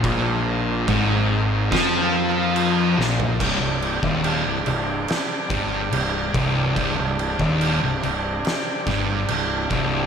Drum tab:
CC |x---x---x---x---|x-x-x-x-x-x-x-x-|x-x-x-x-x-x-x-x-|
SD |--------o-----o-|--------o-------|--------o-o-----|
FT |---------------o|----------------|----------------|
BD |o---o---o-------|o--o------o---o-|o--o------o---o-|